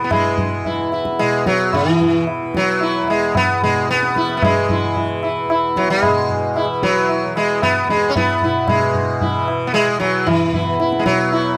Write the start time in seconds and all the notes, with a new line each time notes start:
Already playing: E2 B2 E3
0.04 B3
0.11 G#3, tabla na, tabla ge
0.38 tabla ge
0.58 E2
0.65 E4, tabla tin, tabla ge
0.92 E4, tabla na
1.05 tabla ke
1.19 B2 G#3, tabla na
1.46 F#3, tabla ke
1.73 E3, tabla na, tabla ge
1.81 E3
2.00 tabla ge
2.27 tabla na
2.42 E3
2.55 F#3, tabla ke
2.81 E4, tabla tin
3.03 E2
3.08 G#3, tabla na
3.35 B3, tabla na, tabla ge
3.62 B2 G#3, tabla ge
3.89 B3, tabla te
4.03 tabla te
4.16 E4, tabla ke
4.24 E3
4.29 tabla te
4.37 B3
4.42 G#3, tabla na, tabla ge
4.69 E4, tabla ge
4.84 E3
4.96 tabla tin, tabla ge
5.23 E4, tabla na
5.45 E2
5.50 E4, tabla na
5.76 F#3, tabla ke
5.90 G#3
6.03 B2, tabla na, tabla ge
6.29 tabla ge
6.56 E4, tabla na
6.66 E3
6.83 F#3 E4, tabla ke
7.09 tabla tin
7.26 E3
7.36 G#3, tabla na
7.62 B3, tabla na, tabla ge
7.84 E2
7.89 G#3, tabla te
8.09 C#4
8.16 B3 E4, tabla na, tabla ge
8.42 B2 E4, tabla ge
8.68 B2 G#3, tabla na, tabla ge
8.94 tabla ge
9.21 E4, tabla tin, tabla ge
9.28 E3
9.48 tabla na
9.67 B3
9.74 G#3, tabla na
9.88 E3
10.00 F#3, tabla ke
10.27 E3, tabla na, tabla ge
10.47 E2
10.54 E4, tabla ge
10.80 E4, tabla te
10.92 tabla te
10.99 G#3
11.05 B2 F#3, tabla ke
11.19 tabla te
11.32 E4, tabla tin